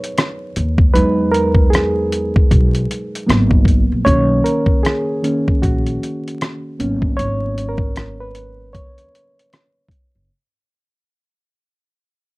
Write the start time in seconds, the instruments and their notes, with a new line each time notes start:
Already playing: reed electric piano F#3 B3 D#4 A#4 B4 C#5
0.04 closed hi-hat
0.18 cross-stick, closed hi-hat
0.56 upright bass D#2, closed hi-hat
0.78 kick
0.94 upright bass E2, reed electric piano F#3 G#3 D#4 B4, closed hi-hat
1.32 reed electric piano A#4, closed hi-hat
1.55 kick
1.70 reed electric piano G#4, closed hi-hat
1.75 cross-stick
2.12 closed hi-hat
2.36 kick
2.51 upright bass B1, kick, closed hi-hat
2.75 closed hi-hat
2.91 closed hi-hat
3.15 closed hi-hat
3.27 upright bass G#1, reed electric piano F#3 A#3 B3, cross-stick, closed hi-hat
3.51 kick
3.65 kick, closed hi-hat
3.92 upright bass A#1
4.05 upright bass B1, reed electric piano D#3 A#3 C#4 C#5, kick, closed hi-hat
4.44 reed electric piano A#4, closed hi-hat
4.66 kick
4.83 reed electric piano G#4, cross-stick, closed hi-hat
5.23 reed electric piano D#3 A#3 C#4, closed hi-hat
5.48 kick
5.62 upright bass A#1, reed electric piano F#4, kick, closed hi-hat
5.86 closed hi-hat
6.03 closed hi-hat
6.28 closed hi-hat
6.41 cross-stick, closed hi-hat
6.79 upright bass G#1, reed electric piano F#3 A#3 B3 C#4, closed hi-hat
7.02 kick
7.17 upright bass G#1, reed electric piano C#5, closed hi-hat
7.58 closed hi-hat
7.69 reed electric piano A#4
7.78 kick
7.96 cross-stick, closed hi-hat
8.20 reed electric piano B4
8.35 closed hi-hat
8.73 upright bass D#2, reed electric piano C#5, kick, closed hi-hat
8.98 closed hi-hat
9.15 closed hi-hat
9.39 closed hi-hat
9.53 cross-stick, closed hi-hat
9.89 kick, closed hi-hat
10.15 upright bass F#1